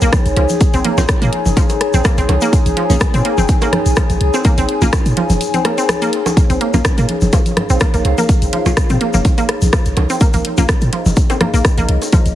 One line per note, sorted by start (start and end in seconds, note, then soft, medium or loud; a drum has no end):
0.00 0.10 A#1 medium
0.00 0.07 A#3 loud
0.00 12.35 D#4 medium
0.00 12.35 G#4 medium
0.00 12.35 C#5 medium
0.00 7.26 G#5 medium
0.00 closed hi-hat soft
0.00 shaker medium
0.13 kick loud
0.13 cross-stick medium
0.13 closed hi-hat medium
0.13 high conga soft
0.13 shaker medium
0.26 0.34 A#1 loud
0.26 closed hi-hat soft
0.26 shaker soft
0.37 0.46 C2 loud
0.37 0.40 F3 medium
0.37 closed hi-hat medium
0.37 high bongo soft
0.49 closed hi-hat soft
0.49 high conga soft
0.49 shaker medium
0.61 kick loud
0.61 closed hi-hat medium
0.61 shaker medium
0.74 0.82 A#1 loud
0.74 0.79 C4 medium
0.74 closed hi-hat soft
0.74 shaker soft
0.85 0.88 A#3 medium
0.85 closed hi-hat medium
0.85 high conga soft
0.98 1.06 A#1 loud
0.98 1.04 A#3 medium
0.98 1.01 C4 medium
0.98 1.04 C#4 medium
0.98 1.04 F4 loud
0.98 closed hi-hat soft
0.98 high bongo medium
0.98 low conga medium
0.98 shaker medium
1.08 kick loud
1.08 cross-stick medium
1.08 closed hi-hat medium
1.08 shaker medium
1.22 1.30 A#2 medium
1.22 1.27 A#3 loud
1.22 closed hi-hat soft
1.22 high conga soft
1.22 shaker soft
1.33 closed hi-hat medium
1.46 1.54 F1 medium
1.46 low conga medium
1.46 shaker medium
1.57 1.60 F3 medium
1.57 kick loud
1.57 closed hi-hat medium
1.57 high conga soft
1.57 shaker medium
1.69 closed hi-hat soft
1.69 high bongo soft
1.69 shaker soft
1.81 cross-stick medium
1.81 closed hi-hat medium
1.93 2.02 A#1 medium
1.93 1.99 C4 medium
1.93 closed hi-hat soft
1.93 high conga soft
1.93 shaker medium
2.04 2.08 A#3 medium
2.04 kick loud
2.04 cross-stick medium
2.04 closed hi-hat medium
2.04 shaker medium
2.17 2.26 A#1 loud
2.17 2.21 C4 medium
2.17 closed hi-hat soft
2.17 shaker soft
2.29 2.38 C2 medium
2.29 closed hi-hat medium
2.29 high bongo medium
2.29 high conga soft
2.41 2.47 A#3 loud
2.41 closed hi-hat soft
2.41 shaker medium
2.53 kick loud
2.53 closed hi-hat medium
2.53 shaker medium
2.66 2.74 A#1 loud
2.66 closed hi-hat soft
2.66 high conga soft
2.66 shaker soft
2.77 2.80 F3 medium
2.77 closed hi-hat medium
2.90 2.98 A#1 loud
2.90 2.96 A#3 medium
2.90 2.96 C#4 medium
2.90 2.96 F4 loud
2.90 closed hi-hat soft
2.90 low conga medium
2.90 shaker medium
3.00 kick loud
3.00 cross-stick medium
3.00 closed hi-hat medium
3.00 high bongo soft
3.00 high conga soft
3.00 shaker medium
3.14 3.22 A#2 medium
3.14 3.19 C4 medium
3.14 closed hi-hat soft
3.14 shaker soft
3.25 3.28 A#3 medium
3.25 closed hi-hat medium
3.38 3.46 F1 medium
3.38 3.41 C4 medium
3.38 high conga soft
3.38 low conga medium
3.38 shaker medium
3.48 kick loud
3.48 closed hi-hat medium
3.48 shaker medium
3.62 3.67 A#3 loud
3.62 closed hi-hat soft
3.62 high bongo medium
3.62 shaker soft
3.73 cross-stick medium
3.73 closed hi-hat medium
3.73 high conga soft
3.73 low conga medium
3.86 3.94 A#1 medium
3.86 closed hi-hat soft
3.86 shaker medium
3.96 4.00 F3 medium
3.96 kick loud
3.96 cross-stick medium
3.96 closed hi-hat medium
3.96 shaker medium
4.10 4.18 A#1 loud
4.10 closed hi-hat soft
4.10 high conga soft
4.10 shaker soft
4.21 4.30 C2 loud
4.21 closed hi-hat medium
4.34 4.39 C4 medium
4.34 closed hi-hat soft
4.34 high bongo soft
4.34 shaker medium
4.44 4.48 A#3 medium
4.44 kick loud
4.44 closed hi-hat medium
4.44 high conga soft
4.44 shaker medium
4.58 4.66 A#1 loud
4.58 4.61 C4 medium
4.58 closed hi-hat soft
4.58 shaker soft
4.69 closed hi-hat medium
4.82 4.90 A#1 loud
4.82 4.88 A#3 medium
4.82 4.87 A#3 loud
4.82 4.88 C#4 medium
4.82 4.88 F4 loud
4.82 closed hi-hat soft
4.82 high conga soft
4.82 low conga medium
4.82 shaker medium
4.93 kick loud
4.93 cross-stick medium
4.93 closed hi-hat medium
4.93 high bongo medium
4.93 shaker medium
5.06 5.14 A#2 medium
5.06 closed hi-hat soft
5.06 shaker soft
5.17 5.20 F3 medium
5.17 closed hi-hat medium
5.17 high conga soft
5.30 5.38 F1 medium
5.30 closed hi-hat soft
5.30 low conga loud
5.30 shaker medium
5.41 closed hi-hat medium
5.41 shaker medium
5.54 5.59 C4 medium
5.54 closed hi-hat soft
5.54 high conga soft
5.54 shaker soft
5.65 5.68 A#3 medium
5.65 cross-stick medium
5.65 closed hi-hat medium
5.65 high bongo soft
5.78 5.81 C4 medium
5.78 closed hi-hat soft
5.78 shaker medium
5.89 cross-stick loud
5.89 closed hi-hat medium
5.89 high conga soft
5.89 shaker medium
6.02 6.07 A#3 loud
6.02 closed hi-hat soft
6.02 shaker soft
6.13 closed hi-hat medium
6.26 closed hi-hat soft
6.26 high bongo medium
6.26 high conga soft
6.26 shaker medium
6.37 kick loud
6.37 closed hi-hat medium
6.37 high conga soft
6.37 shaker medium
6.50 6.58 A#1 loud
6.50 6.55 C4 medium
6.50 closed hi-hat soft
6.50 shaker soft
6.61 6.64 A#3 medium
6.61 closed hi-hat medium
6.74 6.82 A#1 loud
6.74 6.80 A#3 medium
6.74 6.79 A#3 medium
6.74 6.80 C#4 medium
6.74 6.80 F4 loud
6.74 closed hi-hat soft
6.74 high bongo soft
6.74 high conga soft
6.74 low conga medium
6.74 shaker medium
6.85 kick loud
6.85 cross-stick loud
6.85 closed hi-hat medium
6.85 shaker medium
6.98 7.06 A#2 loud
6.98 7.03 A#3 loud
6.98 closed hi-hat soft
6.98 shaker soft
7.09 closed hi-hat medium
7.09 high conga soft
7.21 7.30 F1 medium
7.21 10.41 F5 medium
7.21 low conga loud
7.21 shaker medium
7.33 7.36 F3 medium
7.33 kick loud
7.33 closed hi-hat medium
7.33 high bongo medium
7.33 shaker medium
7.46 closed hi-hat soft
7.46 high conga soft
7.46 shaker soft
7.57 cross-stick medium
7.57 closed hi-hat medium
7.57 low conga loud
7.70 7.78 A#1 medium
7.70 7.75 C4 medium
7.70 closed hi-hat soft
7.70 shaker medium
7.80 7.84 A#3 medium
7.80 kick loud
7.80 cross-stick loud
7.80 closed hi-hat medium
7.80 high conga soft
7.80 shaker medium
7.94 8.02 A#1 loud
7.94 7.99 A#3 medium
7.94 closed hi-hat soft
7.94 shaker soft
8.05 8.14 C2 loud
8.05 closed hi-hat medium
8.05 high bongo soft
8.18 8.23 A#3 loud
8.18 closed hi-hat soft
8.18 high conga soft
8.18 shaker medium
8.29 kick loud
8.29 closed hi-hat medium
8.29 shaker medium
8.42 8.50 A#1 loud
8.42 closed hi-hat soft
8.42 shaker soft
8.53 8.56 F3 medium
8.53 closed hi-hat loud
8.53 high conga soft
8.66 8.74 A#1 loud
8.66 8.72 A#3 medium
8.66 8.72 C#4 medium
8.66 8.72 F4 loud
8.66 closed hi-hat soft
8.66 high bongo medium
8.66 low conga medium
8.66 shaker medium
8.77 kick loud
8.77 cross-stick medium
8.77 closed hi-hat medium
8.77 shaker medium
8.90 8.98 A#2 loud
8.90 8.95 C4 medium
8.90 closed hi-hat soft
8.90 high conga soft
8.90 shaker soft
9.01 9.04 A#3 medium
9.01 closed hi-hat loud
9.14 9.22 F1 medium
9.14 9.19 A#3 medium
9.14 low conga loud
9.14 shaker medium
9.25 kick loud
9.25 closed hi-hat medium
9.25 high conga soft
9.25 shaker medium
9.38 9.43 A#3 loud
9.38 closed hi-hat soft
9.38 high bongo soft
9.38 shaker soft
9.49 cross-stick medium
9.49 closed hi-hat medium
9.62 9.70 A#1 medium
9.62 closed hi-hat soft
9.62 high conga soft
9.62 shaker medium
9.73 9.76 F3 medium
9.73 kick loud
9.73 cross-stick loud
9.73 closed hi-hat medium
9.73 shaker medium
9.85 9.94 A#1 loud
9.85 closed hi-hat soft
9.85 shaker soft
9.97 10.06 C2 loud
9.97 closed hi-hat loud
9.97 high bongo medium
9.97 high conga soft
10.10 10.15 C4 medium
10.10 closed hi-hat soft
10.10 shaker medium
10.20 10.24 A#3 medium
10.20 12.35 D#5 medium
10.20 kick loud
10.20 closed hi-hat medium
10.20 shaker medium
10.33 10.42 A#1 loud
10.33 10.39 A#3 medium
10.33 closed hi-hat soft
10.33 high conga soft
10.33 shaker soft
10.45 closed hi-hat loud
10.58 10.66 A#1 loud
10.58 10.64 A#3 medium
10.58 10.63 A#3 loud
10.58 10.64 C#4 medium
10.58 10.64 F4 medium
10.58 closed hi-hat soft
10.58 low conga medium
10.58 shaker medium
10.69 kick loud
10.69 cross-stick loud
10.69 closed hi-hat medium
10.69 high bongo soft
10.69 high conga soft
10.69 shaker medium
10.81 10.90 A#2 loud
10.81 closed hi-hat soft
10.81 shaker soft
10.93 10.96 F3 medium
10.93 closed hi-hat medium
11.06 11.14 F1 medium
11.06 high conga soft
11.06 low conga loud
11.06 shaker medium
11.16 kick loud
11.16 closed hi-hat medium
11.16 shaker medium
11.30 11.35 C4 medium
11.30 closed hi-hat soft
11.30 high bongo medium
11.30 shaker soft
11.41 11.44 A#3 medium
11.41 cross-stick medium
11.41 closed hi-hat medium
11.41 high conga soft
11.41 low conga loud
11.54 11.62 A#1 medium
11.54 11.59 A#3 medium
11.54 closed hi-hat soft
11.54 shaker medium
11.65 kick loud
11.65 cross-stick medium
11.65 closed hi-hat medium
11.65 shaker medium
11.78 11.86 A#1 loud
11.78 11.83 A#3 loud
11.78 closed hi-hat soft
11.78 high conga soft
11.78 shaker soft
11.89 11.98 C2 loud
11.89 closed hi-hat loud
12.02 closed hi-hat soft
12.02 high bongo soft
12.02 shaker medium
12.13 12.16 F3 medium
12.13 kick loud
12.13 closed hi-hat medium
12.13 high conga soft
12.13 shaker medium
12.26 12.34 A#1 loud
12.26 closed hi-hat soft
12.26 shaker soft